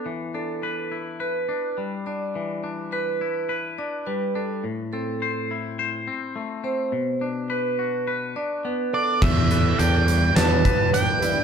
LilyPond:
<<
  \new Staff \with { instrumentName = "Lead electric guitar" } { \time 4/4 \key e \minor \tempo 4 = 105 r1 | r1 | r1 | r2. r8 d''8 |
e''4 g''4 a''4 g''4 | }
  \new Staff \with { instrumentName = "Vibraphone" } { \time 4/4 \key e \minor r8 a'4 r8 b'4 r8 d''8~ | d''8 r8 b'4 r8 d''8 b'8 a'8 | r8 a'4 r2 c''8~ | c''8 r8 b'4 r8 d''8 b'8 a'8 |
r8 a'4 r8 b'4 r8 d''8 | }
  \new Staff \with { instrumentName = "Ambient pad" } { \time 4/4 \key e \minor r1 | r1 | r1 | r1 |
<e d' g' b'>1 | }
  \new Staff \with { instrumentName = "Clean electric guitar" } { \time 4/4 \key e \minor e8 d'8 b'8 e'8 b'8 d'8 g8 d'8 | e8 d'8 b'8 e'8 b'8 d'8 g8 d'8 | a,8 c'8 c''8 e'8 c''8 c'8 a8 c'8 | b,8 d'8 b'8 fis'8 b'8 d'8 b8 d'8 |
e8 b'8 d'8 g8 d'8 b'8 d'8 e'8 | }
  \new Staff \with { instrumentName = "Fingered electric bass" } { \clef bass \time 4/4 \key e \minor r1 | r1 | r1 | r1 |
e,4 e,4 e,8 r4. | }
  \new DrumStaff \with { instrumentName = "Drums" } \drummode { \time 4/4 r4 r4 r4 r4 | r4 r4 r4 r4 | r4 r4 r4 r4 | r4 r4 r4 r4 |
<cymc bd>8 <hh sn>8 hh8 hh8 <hh sn>8 <hh bd>8 hh8 hh8 | }
>>